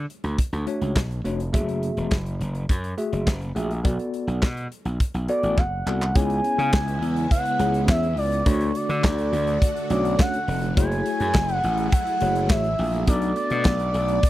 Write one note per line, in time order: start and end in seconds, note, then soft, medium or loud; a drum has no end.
0.10 closed hi-hat medium
0.24 0.36 D2 medium
0.24 closed hi-hat soft
0.38 kick medium
0.38 closed hi-hat loud
0.53 0.65 D2 medium
0.53 closed hi-hat soft
0.67 0.98 A3 medium
0.67 0.98 D4 medium
0.67 0.98 F#4 medium
0.67 0.98 C#5 medium
0.67 closed hi-hat medium
0.81 0.94 C#2 medium
0.81 closed hi-hat medium
0.96 1.20 B1 medium
0.96 kick loud
0.96 snare loud
0.96 clap medium
1.11 closed hi-hat soft
1.25 1.49 F1 medium
1.25 1.40 A3 medium
1.25 1.40 D4 medium
1.25 1.40 F#4 medium
1.25 1.41 C#5 medium
1.25 closed hi-hat medium
1.40 closed hi-hat medium
1.53 1.90 F#1 loud
1.53 2.15 A3 medium
1.53 2.15 F#4 medium
1.53 2.15 G#4 medium
1.53 2.15 E5 medium
1.53 kick loud
1.53 closed hi-hat medium
1.69 closed hi-hat soft
1.83 closed hi-hat medium
1.97 2.09 E1 medium
1.97 closed hi-hat soft
2.11 2.36 F#1 medium
2.11 kick loud
2.11 snare medium
2.11 clap medium
2.26 closed hi-hat soft
2.40 2.64 F#1 medium
2.40 closed hi-hat medium
2.55 closed hi-hat soft
2.69 2.93 F#2 loud
2.69 kick loud
2.69 closed hi-hat medium
2.84 closed hi-hat soft
2.97 3.29 A3 medium
2.97 3.29 F#4 medium
2.97 3.29 G#4 medium
2.97 3.29 E5 medium
2.97 closed hi-hat medium
3.13 3.25 F#1 medium
3.13 closed hi-hat medium
3.27 3.51 F#1 loud
3.27 kick loud
3.27 snare loud
3.27 clap medium
3.41 closed hi-hat soft
3.55 3.80 A#1 medium
3.55 3.71 A3 medium
3.55 3.71 F#4 medium
3.55 3.71 G#4 medium
3.55 3.71 E5 medium
3.55 closed hi-hat medium
3.71 closed hi-hat medium
3.84 3.97 B1 loud
3.84 4.46 B3 medium
3.84 4.46 F#4 medium
3.84 4.46 A4 medium
3.84 4.46 D5 loud
3.84 kick loud
3.84 closed hi-hat medium
3.99 closed hi-hat soft
4.14 closed hi-hat medium
4.27 4.40 B1 medium
4.27 closed hi-hat soft
4.42 4.67 B2 medium
4.42 kick loud
4.42 snare loud
4.42 clap medium
4.57 closed hi-hat soft
4.72 closed hi-hat medium
4.85 4.97 B1 medium
4.85 closed hi-hat medium
5.00 kick loud
5.00 closed hi-hat medium
5.14 5.26 B1 medium
5.14 closed hi-hat soft
5.28 5.60 B3 medium
5.28 5.60 F#4 medium
5.28 5.60 A4 medium
5.28 5.60 D5 loud
5.28 5.60 D5 medium
5.28 closed hi-hat medium
5.43 5.59 A1 medium
5.43 closed hi-hat soft
5.57 5.82 F#1 medium
5.57 6.17 F#5 loud
5.57 kick loud
5.57 clap medium
5.86 6.10 C2 medium
5.86 6.02 B3 medium
5.86 6.02 F#4 medium
5.86 6.02 A4 medium
5.86 6.03 D5 medium
5.86 clap medium
6.02 clap medium
6.15 6.39 C#2 loud
6.15 8.44 C#3 medium
6.15 8.44 G#3 medium
6.15 6.77 B3 medium
6.15 8.44 B3 medium
6.15 6.77 C#4 medium
6.15 8.44 E4 medium
6.15 6.77 E4 medium
6.15 6.77 G#4 medium
6.15 6.77 C#5 medium
6.15 7.31 G#5 loud
6.15 kick loud
6.15 closed hi-hat medium
6.30 closed hi-hat medium
6.44 closed hi-hat medium
6.58 6.71 C#3 loud
6.58 closed hi-hat soft
6.73 6.97 C#2 medium
6.73 kick loud
6.73 snare loud
6.73 clap medium
6.88 closed hi-hat medium
7.02 7.26 E2 medium
7.02 closed hi-hat medium
7.16 closed hi-hat medium
7.31 7.85 F#5 loud
7.31 kick loud
7.31 closed hi-hat medium
7.46 closed hi-hat medium
7.59 7.88 C#2 medium
7.59 8.06 B3 medium
7.59 8.06 C#4 medium
7.59 8.06 E4 medium
7.59 8.06 G#4 medium
7.59 8.06 C#5 medium
7.59 closed hi-hat medium
7.74 closed hi-hat medium
7.88 8.17 E2 loud
7.88 8.16 E5 loud
7.88 kick loud
7.88 snare loud
7.88 clap loud
8.03 closed hi-hat soft
8.17 8.41 C#2 loud
8.17 8.45 D5 loud
8.17 open hi-hat medium
8.32 closed hi-hat medium
8.46 8.70 D2 loud
8.46 10.75 D3 medium
8.46 9.08 A3 medium
8.46 10.75 A3 medium
8.46 9.08 D4 medium
8.46 10.75 F#4 loud
8.46 9.08 F#4 medium
8.46 8.77 C#5 loud
8.46 9.08 D5 medium
8.46 kick loud
8.46 closed hi-hat loud
8.61 closed hi-hat medium
8.75 9.91 D5 loud
8.75 closed hi-hat medium
8.89 9.01 D3 loud
8.89 closed hi-hat soft
9.04 9.28 D2 medium
9.04 kick loud
9.04 snare loud
9.04 clap medium
9.18 closed hi-hat medium
9.32 9.57 D2 medium
9.32 closed hi-hat medium
9.47 closed hi-hat medium
9.62 kick loud
9.62 closed hi-hat loud
9.76 closed hi-hat medium
9.90 10.14 B1 loud
9.90 10.37 A3 medium
9.90 10.37 C#4 medium
9.90 10.37 D4 medium
9.90 10.37 F#4 medium
9.90 10.37 C#5 medium
9.90 10.18 D5 loud
9.90 closed hi-hat loud
10.05 closed hi-hat medium
10.19 10.73 F#5 loud
10.19 kick loud
10.19 snare loud
10.19 clap loud
10.34 closed hi-hat soft
10.48 10.72 F1 medium
10.48 open hi-hat medium
10.63 closed hi-hat medium
10.77 11.01 F#1 loud
10.77 13.05 F#3 medium
10.77 11.38 A3 medium
10.77 13.06 A3 medium
10.77 11.39 E4 medium
10.77 13.06 E4 medium
10.77 11.39 F#4 medium
10.77 13.05 G#4 medium
10.77 11.39 G#4 medium
10.77 11.39 C#5 medium
10.77 11.54 G#5 loud
10.77 kick loud
10.77 closed hi-hat loud
10.92 closed hi-hat medium
11.06 closed hi-hat medium
11.20 11.32 F#2 loud
11.20 closed hi-hat medium
11.34 11.59 F#1 medium
11.34 kick loud
11.34 snare loud
11.34 clap medium
11.49 closed hi-hat medium
11.54 11.93 F#5 loud
11.64 11.88 A1 medium
11.64 closed hi-hat medium
11.78 closed hi-hat medium
11.92 12.50 F#5 loud
11.92 kick loud
11.92 closed hi-hat medium
12.07 closed hi-hat medium
12.21 12.50 F#1 medium
12.21 12.67 A3 medium
12.21 12.67 E4 medium
12.21 12.67 F#4 medium
12.21 12.68 G#4 medium
12.21 12.68 C#5 medium
12.21 closed hi-hat medium
12.36 closed hi-hat medium
12.50 12.74 A1 loud
12.50 13.04 E5 loud
12.50 kick loud
12.50 snare loud
12.50 clap loud
12.64 closed hi-hat soft
12.79 13.03 A#1 loud
12.79 open hi-hat medium
12.93 closed hi-hat medium
13.07 13.32 B1 loud
13.07 14.30 A3 medium
13.07 14.30 B3 medium
13.07 13.69 B3 medium
13.07 14.30 D4 medium
13.07 13.69 D4 medium
13.07 13.69 F#4 medium
13.07 13.69 A4 medium
13.07 13.35 D5 loud
13.07 13.70 D5 medium
13.07 kick loud
13.07 closed hi-hat loud
13.22 closed hi-hat medium
13.36 14.30 D5 loud
13.36 closed hi-hat medium
13.50 13.63 B2 loud
13.50 closed hi-hat soft
13.65 13.89 B1 medium
13.65 kick loud
13.65 snare loud
13.65 clap medium
13.80 closed hi-hat medium
13.94 14.18 B1 loud
13.94 closed hi-hat medium
14.08 closed hi-hat medium
14.23 kick loud
14.23 closed hi-hat medium